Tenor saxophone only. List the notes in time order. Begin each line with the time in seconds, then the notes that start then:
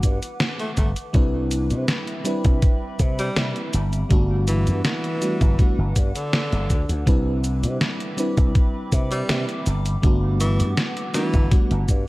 0.60 A3
0.78 A3
3.19 G3
4.48 E3
4.85 E3
6.15 D3
9.12 G3
10.41 E3
11.14 E3